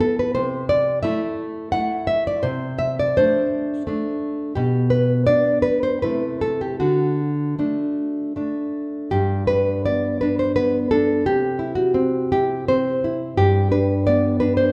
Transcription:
0.00 0.32 B3 soft
0.00 0.32 E4 soft
0.00 0.18 A4 medium
0.19 0.34 B4 medium
0.35 1.02 C3 medium
0.35 0.68 C5 medium
0.69 1.02 D5 medium
1.03 1.72 A3 soft
1.03 1.72 E4 medium
1.03 1.71 E5 medium
1.72 2.40 A3 soft
1.72 2.40 E4 soft
1.72 2.07 F#5 medium
2.07 2.26 E5 medium
2.27 2.45 D5 medium
2.43 3.13 C3 medium
2.43 2.78 C5 medium
2.79 2.98 E5 medium
2.99 3.17 D5 medium
3.17 3.86 A3 soft
3.17 3.87 D4 medium
3.17 4.18 C5 medium
3.87 4.52 A3 soft
3.87 4.53 D4 soft
4.55 5.25 B2 medium
4.55 4.89 G4 medium
4.90 5.25 B4 medium
5.27 5.98 B3 soft
5.27 5.98 D4 soft
5.27 5.62 D5 medium
5.62 5.82 B4 medium
5.83 6.02 C5 medium
6.02 6.78 C3 soft
6.02 6.76 A3 soft
6.02 6.76 E4 soft
6.02 6.39 B4 medium
6.41 6.60 A4 medium
6.61 6.79 G4 medium
6.80 7.55 D3 soft
6.80 8.31 F#4 medium
7.59 8.35 A3 soft
7.59 8.36 D4 soft
8.36 9.09 A3 soft
8.36 9.10 D4 soft
9.11 11.20 G2 soft
9.11 9.47 G4 medium
9.47 10.21 D4 soft
9.47 9.83 B4 medium
9.86 10.55 B3 soft
9.86 10.20 D5 medium
10.21 10.90 D4 soft
10.21 10.39 B4 medium
10.39 10.55 C5 medium
10.56 11.25 B3 soft
10.56 10.89 B4 medium
10.91 11.25 D4 soft
10.91 11.24 A4 medium
11.26 13.36 C3 medium
11.26 11.75 G4 medium
11.59 12.32 E4 soft
11.75 12.29 F#4 medium
11.94 12.68 C4 soft
12.32 13.03 E4 soft
12.32 12.68 G4 medium
12.68 13.39 C4 soft
12.68 13.36 C5 medium
13.04 13.39 E4 soft
13.38 14.72 G2 medium
13.38 13.71 G4 medium
13.71 14.40 D4 soft
13.71 14.05 B4 medium
14.07 14.72 B3 soft
14.07 14.39 D5 medium
14.40 14.72 D4 soft
14.40 14.57 B4 medium
14.57 14.72 C5 medium

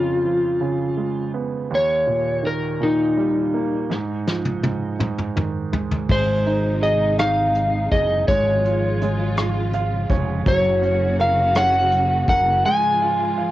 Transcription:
0.00 1.67 F2 medium
0.00 0.59 C#3 soft
0.00 1.32 F4 medium
0.25 1.67 F3 soft
0.61 1.67 C#3 soft
0.97 1.69 G#3 soft
1.34 1.70 B3 soft
1.70 3.86 D#2 medium
1.75 2.48 C#5 medium
2.07 2.79 A#2 soft
2.43 3.86 D#3 soft
2.43 2.83 A#4 medium
2.81 3.87 A#2 soft
2.81 5.34 D#4 medium
3.18 3.88 G3 soft
3.54 3.90 A#3 soft
3.90 4.62 G#2 medium
3.90 snare soft
4.27 4.98 F3 soft
4.27 snare soft
4.45 high tom soft
4.63 4.98 G#2 soft
4.63 high tom medium
4.99 6.06 G#2 soft
4.99 mid tom medium
5.18 mid tom medium
5.36 6.07 D#3 soft
5.36 mid tom medium
5.72 6.08 G#3 soft
5.72 floor tom medium
5.91 floor tom medium
6.09 7.87 G#1 medium
6.09 8.25 C3 medium
6.09 8.25 D#3 medium
6.09 10.42 G#3 medium
6.09 8.24 G#3 medium
6.09 8.25 D#4 medium
6.09 6.85 C5 medium
6.09 kick medium
6.09 crash medium
6.46 7.18 D#4 soft
6.46 closed hi-hat soft
6.82 7.90 G#4 soft
6.82 7.19 D#5 medium
6.82 closed hi-hat soft
7.18 8.25 D#4 soft
7.18 7.91 F5 medium
7.18 cross-stick medium
7.18 closed hi-hat medium
7.55 closed hi-hat soft
7.91 8.26 F#1 medium
7.91 8.27 G#4 soft
7.91 8.27 D#5 medium
7.91 kick medium
7.91 closed hi-hat soft
8.27 10.06 G#1 medium
8.27 13.51 C#3 medium
8.27 10.44 F3 medium
8.27 9.00 G#3 medium
8.27 10.44 F4 medium
8.27 9.33 C#5 medium
8.27 kick loud
8.27 closed hi-hat medium
8.65 9.36 F4 soft
8.65 closed hi-hat soft
9.01 10.09 G#3 soft
9.01 closed hi-hat soft
9.37 10.43 F4 soft
9.37 cross-stick loud
9.37 closed hi-hat medium
9.73 10.08 F5 medium
9.73 closed hi-hat soft
10.10 10.44 F1 medium
10.10 10.45 G#3 soft
10.10 10.44 C#5 medium
10.10 kick medium
10.10 closed hi-hat soft
10.45 12.24 F#1 medium
10.45 12.62 F#3 medium
10.45 12.61 F#3 medium
10.45 12.62 A#3 medium
10.45 12.63 F#4 medium
10.45 11.16 C#5 medium
10.45 kick medium
10.45 closed hi-hat medium
10.82 11.54 C#4 soft
10.82 closed hi-hat soft
11.19 12.28 A#4 soft
11.19 11.57 F5 medium
11.19 closed hi-hat soft
11.55 12.62 C#4 medium
11.55 12.28 F#5 medium
11.55 cross-stick loud
11.55 closed hi-hat medium
11.92 closed hi-hat soft
12.28 12.62 F#1 medium
12.28 12.64 A#4 soft
12.28 12.65 F#5 medium
12.28 kick medium
12.28 closed hi-hat soft
12.63 13.51 G#2 medium
12.63 13.51 F3 medium
12.63 13.51 G#3 medium
12.63 13.51 F4 medium
12.63 13.51 G#5 loud
13.02 13.51 F4 medium
13.38 13.51 F5 medium

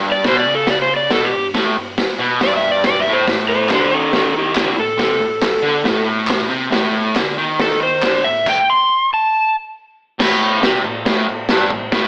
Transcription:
0.00 0.24 G2 loud
0.12 0.25 D5 medium
0.24 0.46 B2 loud
0.24 0.39 C5 medium
0.24 kick loud
0.24 snare loud
0.24 open hi-hat medium
0.40 0.54 D5 medium
0.47 1.11 C#3 loud
0.55 0.68 A4 medium
0.67 0.81 D5 medium
0.67 kick loud
0.67 snare loud
0.67 open hi-hat soft
0.82 0.96 C5 medium
0.96 1.11 D5 medium
1.11 1.32 B2 loud
1.11 1.25 A4 medium
1.11 kick loud
1.11 snare loud
1.11 open hi-hat medium
1.25 1.46 G4 medium
1.32 1.50 G2 medium
1.54 1.76 A2 loud
1.54 kick medium
1.54 snare medium
1.54 open hi-hat medium
1.77 1.94 G2 medium
1.98 kick loud
1.98 snare loud
1.98 open hi-hat medium
2.19 2.40 B2 loud
2.41 3.06 G2 loud
2.41 2.56 D5 medium
2.41 kick loud
2.41 snare loud
2.41 open hi-hat medium
2.56 2.70 E5 medium
2.71 2.85 D5 medium
2.84 3.00 D5 loud
2.84 kick loud
2.84 snare loud
2.84 open hi-hat medium
3.00 3.13 E5 medium
3.07 3.26 A2 loud
3.13 3.27 C5 medium
3.27 3.70 A2 loud
3.27 kick loud
3.27 snare loud
3.27 open hi-hat medium
3.49 3.71 A4 medium
3.49 3.70 C5 medium
3.69 3.93 D3 loud
3.69 3.92 A4 medium
3.69 kick loud
3.69 snare loud
3.69 clap medium
3.69 open hi-hat medium
3.73 3.93 C5 medium
3.93 4.56 D#3 loud
3.93 4.13 C#4 medium
3.93 4.14 A4 medium
4.13 4.35 C#4 medium
4.13 4.36 A4 medium
4.13 kick loud
4.13 snare loud
4.13 open hi-hat medium
4.37 4.55 E4 medium
4.37 4.55 G4 medium
4.55 4.77 D3 medium
4.55 4.77 E4 medium
4.55 4.78 G4 medium
4.55 kick loud
4.55 snare loud
4.55 clap loud
4.55 open hi-hat medium
4.78 4.96 A2 medium
4.78 6.05 A4 medium
4.98 5.20 C3 loud
4.98 kick loud
4.98 snare medium
4.98 open hi-hat soft
5.20 5.39 A2 medium
5.42 kick loud
5.42 snare loud
5.42 clap medium
5.42 open hi-hat medium
5.62 5.84 D3 loud
5.84 6.49 A2 loud
5.84 kick loud
5.84 snare loud
5.84 open hi-hat medium
6.27 kick loud
6.27 snare loud
6.27 clap loud
6.27 open hi-hat medium
6.50 6.71 C3 loud
6.72 7.15 A2 loud
6.72 kick loud
6.72 snare loud
6.72 open hi-hat medium
7.16 7.37 D3 loud
7.16 kick loud
7.16 snare loud
7.16 clap medium
7.16 open hi-hat medium
7.38 8.02 D#3 loud
7.59 7.82 A4 loud
7.59 kick loud
7.59 snare loud
7.59 open hi-hat medium
7.83 8.24 C5 medium
8.03 8.24 D3 medium
8.03 kick loud
8.03 snare loud
8.03 clap medium
8.03 open hi-hat medium
8.24 8.42 A2 medium
8.24 8.46 E5 medium
8.46 8.69 G5 loud
8.46 kick loud
8.46 crash medium
8.70 9.11 C6 medium
9.14 9.55 A5 loud
10.19 10.62 A2 loud
10.19 kick loud
10.19 snare loud
10.19 crash loud
10.19 crash medium
10.63 10.84 C3 loud
10.63 snare loud
10.63 crash medium
10.85 11.02 A2 medium
11.06 11.27 A2 loud
11.06 kick loud
11.06 snare loud
11.06 crash medium
11.29 11.45 A2 medium
11.49 11.70 G2 loud
11.49 snare loud
11.49 crash medium
11.70 11.88 A2 medium
11.70 kick medium
11.92 12.08 A2 loud
11.92 kick loud
11.92 snare loud
11.92 crash medium

